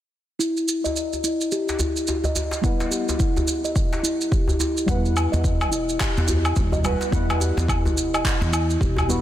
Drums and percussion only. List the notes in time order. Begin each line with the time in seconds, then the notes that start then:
0.40 shaker
0.57 shaker
0.68 shaker
0.85 djembe tone, shaker
0.96 shaker
1.13 djembe tone, shaker
1.24 shaker
1.41 shaker
1.52 shaker
1.69 djembe slap, shaker
1.79 djembe tone, djembe bass, shaker
1.97 shaker
2.07 djembe tone, shaker
2.24 djembe bass, shaker
2.36 djembe slap, djembe bass, shaker
2.51 djembe slap, shaker
2.64 kick, shaker
2.80 djembe slap, shaker
2.92 djembe slap, shaker
3.09 djembe slap, djembe tone, shaker
3.20 kick, shaker
3.37 djembe tone, djembe bass, shaker
3.48 shaker
3.65 shaker
3.76 kick, shaker
3.93 djembe slap, shaker
4.05 shaker
4.21 shaker
4.32 kick, shaker
4.48 djembe bass, shaker
4.60 djembe slap, djembe tone, shaker
4.77 shaker
4.88 kick, shaker
5.05 shaker
5.17 low woodblock, shaker
5.33 djembe tone, shaker
5.44 kick, shaker
5.61 low woodblock, shaker
5.72 shaker
5.89 shaker
6.00 kick, clap, low woodblock, shaker
6.17 djembe slap, shaker
6.28 djembe tone, djembe bass, shaker
6.45 low woodblock, shaker
6.56 kick, djembe tone, shaker
6.72 djembe bass, shaker
6.84 djembe slap, djembe bass, low woodblock, shaker
7.01 djembe slap, djembe tone, shaker
7.12 kick, shaker
7.30 djembe slap, low woodblock, shaker
7.40 djembe slap, shaker
7.57 djembe slap, djembe tone, shaker
7.68 kick, low woodblock, shaker
7.85 djembe tone, djembe bass, shaker
7.98 shaker
8.14 low woodblock, shaker
8.25 kick, clap, shaker
8.42 djembe slap, shaker
8.53 low woodblock, shaker
8.70 shaker
8.81 kick, shaker
8.96 djembe bass, low woodblock, shaker
9.09 djembe slap, djembe tone, shaker